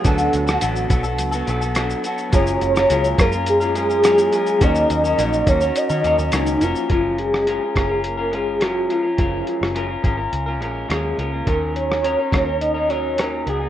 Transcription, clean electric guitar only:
\new Staff \with { instrumentName = "Clean electric guitar" } { \time 4/4 \key fis \major \tempo 4 = 105 <d fis b fis' a'>8. <b fis' a'>16 <d fis b fis' a'>8 <fis b fis' a'>16 <b fis' a'>8 <b fis' a'>16 <fis b fis' a'>16 <b fis' a'>16 <d fis b fis' a'>8 <fis b fis' a'>8 | <fis gis cis' eis' ais'>8. <cis' eis' ais'>16 <fis gis cis' eis' ais'>8 <gis cis' eis' ais'>16 <cis' eis' ais'>8 <cis' eis' ais'>16 <gis cis' eis' ais'>16 <cis' eis' ais'>16 <fis gis cis' eis' ais'>8 <gis cis' eis' ais'>8 | <dis ais cis' fis' ais'>8. <cis' fis' ais'>16 <dis ais cis' fis' ais'>8 <ais cis' fis' ais'>16 <cis' fis' ais'>8 <cis' fis' ais'>16 <ais cis' fis' ais'>16 <cis' fis' ais'>16 <dis ais cis' fis' ais'>8 <ais cis' fis' ais'>8 | <fis gis cis' eis' ais'>4 <fis gis cis' eis' ais'>16 <cis' eis' ais'>16 <gis cis' eis' ais'>16 <cis' eis' ais'>8 <cis' eis' ais'>16 <gis cis' eis' ais'>8 <fis gis cis' eis' ais'>8 <gis cis' eis' ais'>16 <cis' eis' ais'>16 |
<fis gis cis' eis' ais'>4 <fis gis cis' eis' ais'>16 <cis' eis' ais'>16 <gis cis' eis' ais'>16 <cis' eis' ais'>8 <cis' eis' ais'>16 <gis cis' eis' ais'>8 <fis gis cis' eis' ais'>8 <gis cis' eis' ais'>16 <cis' eis' ais'>16 | <dis fis cis' dis' ais'>4 <dis fis cis' dis' ais'>16 <cis' dis' ais'>16 <fis cis' dis' ais'>16 <cis' dis' ais'>8 <cis' dis' ais'>16 <fis cis' dis' ais'>8 <dis fis cis' dis' ais'>8 <fis b dis' gis'>16 <b dis' gis'>16 | }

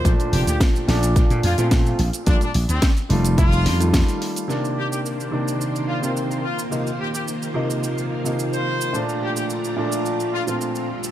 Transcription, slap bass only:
\new Staff \with { instrumentName = "Slap bass" } { \clef bass \time 4/4 \key bes \major \tempo 4 = 108 bes,,16 r16 f,,16 d,16 r8 bes,,8 r16 bes,16 f,16 bes,8 r16 bes,,16 r16 | bes,,16 r16 bes,,16 d,16 r8 f,,4 f,8 r4 | r1 | r1 |
r1 | }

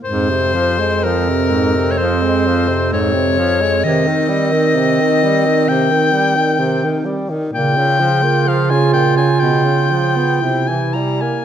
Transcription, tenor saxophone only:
\new Staff \with { instrumentName = "Tenor saxophone" } { \clef bass \time 4/4 \key f \minor \tempo 4 = 64 aes,16 c16 f16 aes16 f16 c16 aes,16 c16 f16 aes16 f16 c16 aes,16 c16 f16 aes16 | c16 ees16 g16 ees16 c16 ees16 g16 ees16 c16 ees16 g16 ees16 c16 ees16 g16 ees16 | bes,16 des16 f16 bes16 f16 des16 bes,16 des16 ces16 des16 f16 ces'16 c16 e16 g16 bes16 | }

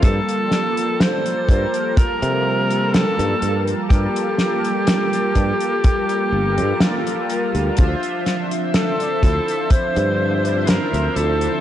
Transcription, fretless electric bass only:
\new Staff \with { instrumentName = "Fretless electric bass" } { \clef bass \time 4/4 \key g \dorian \tempo 4 = 62 g,16 r4 r16 g,16 r8 c8. r16 g,16 g,16 r16 | g,16 r4 r16 g,16 r8. g,,16 g,16 r8. d,16 | d,16 r4 r16 d,16 r8 g,8. r16 d,16 d,16 r16 | }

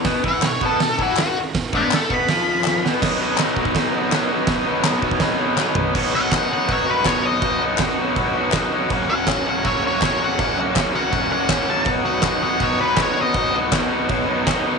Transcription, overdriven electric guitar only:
\new Staff \with { instrumentName = "Overdriven electric guitar" } { \time 4/4 \key b \lydian \tempo 4 = 162 <b, b>8 <e e'>8 b,8 <b, b>8 b,8 <e e'>8 r4 | r8 <d d'>8 r8 <b, b>8 <eis eis'>4. <b, b>8 | <b, fis b dis'>8 <b, fis b dis'>8 <b, fis b dis'>8 <b, fis b dis'>8 <b, fis b dis'>8 <b, fis b dis'>8 <b, fis b dis'>8 <b, fis b dis'>8 | <b, fis b dis'>8 <b, fis b dis'>8 <b, fis b dis'>8 <b, fis b dis'>8 <b, fis b dis'>8 <b, fis b dis'>8 <b, fis b dis'>8 <b, fis b dis'>8 |
<b, fis b dis' fis'>8 <b, fis b dis' fis'>8 <b, fis b dis' fis'>8 <b, fis b dis' fis'>8 <b, fis b dis' fis'>8 <b, fis b dis' fis'>8 <b, fis b dis' fis'>8 <b, fis b dis' fis'>8 | <b, fis b dis' fis'>8 <b, fis b dis' fis'>8 <b, fis b dis' fis'>8 <b, fis b dis' fis'>8 <b, fis b dis' fis'>8 <b, fis b dis' fis'>8 <b, fis b dis' fis'>8 <b, fis b dis' fis'>8 | <fis, cis fis ais cis' fis'>8 <fis, cis fis ais cis' fis'>8 <fis, cis fis ais cis' fis'>8 <fis, cis fis ais cis' fis'>8 <fis, cis fis ais cis' fis'>8 <fis, cis fis ais cis' fis'>8 <fis, cis fis ais cis' fis'>8 <fis, cis fis ais cis' fis'>8 | <fis, cis fis ais cis' fis'>8 <fis, cis fis ais cis' fis'>8 <fis, cis fis ais cis' fis'>8 <fis, cis fis ais cis' fis'>8 <fis, cis fis ais cis' fis'>8 <fis, cis fis ais cis' fis'>8 <fis, cis fis ais cis' fis'>8 <fis, cis fis ais cis' fis'>8 |
<b, fis b dis' fis'>8 <b, fis b dis' fis'>8 <b, fis b dis' fis'>8 <b, fis b dis' fis'>8 <b, fis b dis' fis'>8 <b, fis b dis' fis'>8 <b, fis b dis' fis'>8 <b, fis b dis' fis'>8 | <b, fis b dis' fis'>8 <b, fis b dis' fis'>8 <b, fis b dis' fis'>8 <b, fis b dis' fis'>8 <b, fis b dis' fis'>8 <b, fis b dis' fis'>8 <b, fis b dis' fis'>8 <b, fis b dis' fis'>8 | }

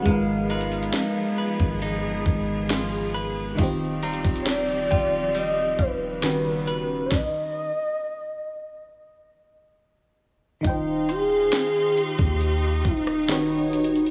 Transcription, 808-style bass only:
\new Staff \with { instrumentName = "808-style bass" } { \clef bass \time 4/4 \key ees \major \tempo 4 = 68 aes,,4 r8. aes,,8 g,,16 aes,,4. | ees,,8. ees,,8. ees,,4 ees,,4. | r1 | ees,,4 r8. ees,8. ees,,4. | }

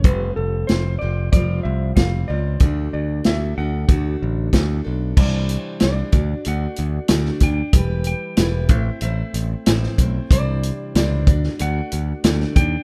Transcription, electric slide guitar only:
\new Staff \with { instrumentName = "Electric slide guitar" } { \time 4/4 \key d \major \tempo 4 = 93 b'8 a'8 c''8 d''8 d''8 e''8 f''8 d''8~ | d''8 d''8 e''8 fis''4 r4. | \key d \mixolydian d''4 d''4 fis''4. g''8~ | g''8 g''4 e''8 e''4. r8 |
d''4 d''4 fis''4. g''8 | }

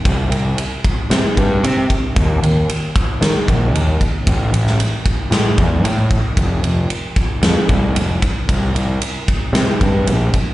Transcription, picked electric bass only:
\new Staff \with { instrumentName = "Picked electric bass" } { \clef bass \time 4/4 \key c \major \tempo 4 = 114 c,8 c,8 r4 c16 r16 g,8 c8 r8 | dis,8 dis,8 r4 dis16 r16 ais,,8 dis,8 r8 | a,,8 a,,8 r4 a,16 r16 e,8 a,8 r8 | f,,8 f,,8 r4 f,16 r16 c,8 f,,8 r8 |
c,8 c,8 r4 c16 r16 g,8 bes,,8 r8 | }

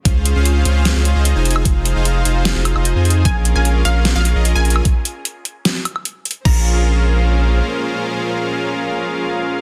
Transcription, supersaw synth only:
\new Staff \with { instrumentName = "Supersaw synth" } { \time 4/4 \key bes \minor \tempo 4 = 150 <des' f' aes' c'' f''>8. <des' f' aes' c'' f''>8. <des' f' aes' c'' f''>8. <des' f' aes' c'' f''>8 <des' f' aes' c'' ees''>8 <ees' f' aes' c'' aes''>8. | <ees' f' aes' c'' f''>8. <ees' f' aes' c'' f''>8. <ees' f' aes' c'' f''>8. <ees' f' aes' c'' f''>8 <ees' f' aes' c'' ees''>8 <ees' f' aes' c'' aes''>8. | <des' f' aes' bes' f''>8. <des' f' aes' bes' f''>8. <des' f' aes' bes' f''>8. <des' f' aes' bes' f''>8 <des' f' aes' bes' ees''>8 <des' f' aes' bes' aes''>8. | r1 |
<des' f' aes' bes' f''>1~ | <des' f' aes' bes' f''>1 | }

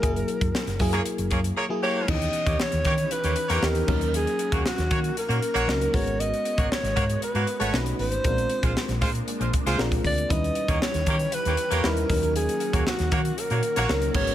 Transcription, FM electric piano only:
\new Staff \with { instrumentName = "FM electric piano" } { \time 4/4 \key dis \phrygian \tempo 4 = 117 <fis ais e' gis'>4 r8 <fis ais e' gis'>4 r8. <fis ais e' gis'>8 r16 | <e b cis' dis' e' g'>4~ <e b cis' dis' e' g'>16 r4. r16 <e b cis' dis' g'>8 <fis ais cis' dis' ais'>8~ | <fis ais cis' dis' ais'>4 r2 <fis ais cis' dis' ais'>8 <gis b cis' fis' ais'>8~ | <gis b cis' fis' ais'>4 r2 <a cis' dis' fis' b'>8 r8 |
<gis bis d' eis' ais'>4~ <gis bis d' eis' ais'>16 r4. r16 <gis bis d' eis' ais'>8 r8 | <g cis' dis' e' b'>4~ <g cis' dis' e' b'>16 r4. r16 <g cis' dis' e' b'>8 <fis ais cis' dis' ais'>8~ | <fis ais cis' dis' ais'>4 r2 <fis ais cis' dis' ais'>8 <gis b cis' fis' ais'>8 | }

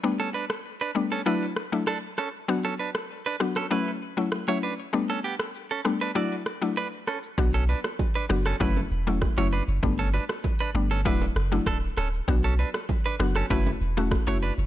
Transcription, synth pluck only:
\new Staff \with { instrumentName = "Synth pluck" } { \time 4/4 \key b \minor \tempo 4 = 98 <g a b d'>4 r8 <g a b d'>16 r16 <fis a d' e'>16 r8 <fis a d' e'>16 r4 | <fis b d' fis'>4 r8 <fis b d' fis'>16 r16 <fis a cis' e'>16 r8 <fis a cis' e'>16 r16 <fis a cis' e'>16 r8 | <g a b d'>4 r8 <g a b d'>16 r16 <fis a d' e'>16 r8 <fis a d' e'>16 r4 | <fis b d' fis'>4 r8 <fis b d' fis'>16 r16 <fis a cis' e'>16 r8 <fis a cis' e'>16 r16 <fis a cis' e'>16 r8 |
<g a b d'>4 r8 <g a b d'>16 r16 <fis a d' e'>16 r8 <fis a d' e'>16 r4 | <fis b d' fis'>4 r8 <fis b d' fis'>16 r16 <a cis' e' fis'>16 r8 <a cis' e' fis'>16 r16 <a cis' e' fis'>16 r8 | }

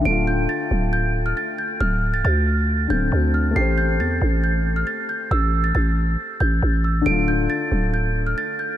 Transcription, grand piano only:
\new Staff \with { instrumentName = "Grand piano" } { \time 4/4 \key d \minor \tempo 4 = 137 <d a f'>1~ | <d a f'>2~ <d a f'>8 <d a c'>4. | <a g' c''>1~ | <a g' c''>1 |
<d a f'>1 | }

